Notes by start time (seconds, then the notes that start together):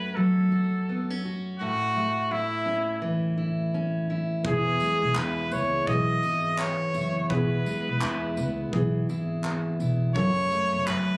Already playing: F#2 A3 C#4 F#4 B4
0.16 F#3 A4
0.52 F#4
0.89 B3
1.10 C#4
1.25 F#4
1.59 A2 F#4
1.96 A3
2.31 E4
2.66 C#4
3.02 E3
3.38 E4
3.74 C#4
4.10 E4
4.43 E1 E2 B3 E4 G#4, kick
4.80 G#3, tambourine
5.02 E1
5.15 E2 E4 B4, clap
5.51 C#2 B3 C#5, tambourine
5.86 B1 E3 B3 E4 G#4 D#5, kick
6.23 G#1 E4, tambourine
6.58 B3 C#5, clap
6.94 F#1 E4, tambourine
7.29 E1 E2 B3 E4 G#4 B4, kick
7.66 G#3, tambourine
7.87 E1
8.01 E2 E4, clap
8.37 C#2 B3, tambourine
8.72 B1 E3 B3 E4 G#4, kick
9.09 G#1 E4, tambourine
9.44 B3, clap
9.80 E1 E4, tambourine
10.14 F#1 F#2 C#4 F#4 A4 C#5, kick
10.51 A3, tambourine
10.73 F#1
10.86 F#2 F#4 B4, clap